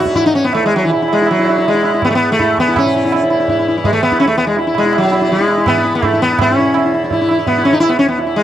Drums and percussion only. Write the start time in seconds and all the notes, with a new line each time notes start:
0.06 tabla ke
0.15 tabla tin, tabla ge
0.53 tabla na
0.90 tabla tin
1.08 tabla na
1.27 tabla na
1.46 tabla na
1.64 tabla tin
1.83 tabla na
2.02 tabla na, tabla ge
2.39 tabla na, tabla ge
2.58 tabla ge
2.76 tabla na, tabla ge
3.12 tabla na
3.30 tabla na
3.48 tabla tin, tabla ge
3.84 tabla tin, tabla ge
4.03 tabla na
4.12 tabla ke
4.21 tabla na
4.57 tabla tin
4.75 tabla na
4.93 tabla na
5.12 tabla na
5.29 tabla tin
5.48 tabla na
5.66 tabla na, tabla ge
5.84 tabla te
6.03 tabla na, tabla ge
6.21 tabla te
6.39 tabla na, tabla ge
6.74 tabla na
7.11 tabla tin, tabla ge
7.29 tabla na
7.47 tabla tin, tabla ge
7.64 tabla na
7.83 tabla na
8.19 tabla tin